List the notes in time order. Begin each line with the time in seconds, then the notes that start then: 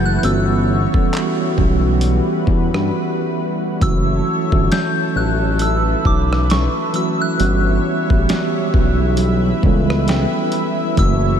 Already playing: F#1 E3 F#3 A3 C#4 E4 F#4 A4 B4
0.06 F#6
0.19 E3 G3 F#6
0.23 G1 G3 B3 C#4 F#4 C#5 E6, closed hi-hat
0.92 B1 E3 G3 B3 C#4 A4, kick
1.13 clap, closed hi-hat
1.56 B1 E3 G3 B3 C#4 F#4, kick
2.01 B4, closed hi-hat
2.47 E2, kick
2.74 G2, cross-stick
3.80 F#1 E3 F#3 A3 C#4 E4 F#4 A4 C#5 E5 E6, kick, closed hi-hat
4.50 G1 E3 F#3 A3 C#4 F#4, kick
4.72 G6, snare, closed hi-hat
5.14 A1 E3 F#3 A3 C#4 D#4 F#6
5.25 E4
5.59 B4 E6, closed hi-hat
6.05 B1 D6, kick
6.33 cross-stick
6.50 C#6, snare, closed hi-hat
6.93 E3 F#3 A3 C#4 F#4 E6, closed hi-hat
7.21 F#6
7.38 G1 E3 G3 B3 C#4 F#4 C#5, closed hi-hat
8.09 A1 E3 G3 B3 C#4 F#4, kick
8.19 G4
8.29 snare, closed hi-hat
8.74 B1, kick
9.17 B4, closed hi-hat
9.62 C#2 E3 G3 B3 C#4 A4 E5, kick
9.90 cross-stick
10.08 G5, snare, closed hi-hat
10.52 B5, closed hi-hat
10.96 F#1 E3 F#3 A3 C#4 F#4 A4 C#5 E6, kick, closed hi-hat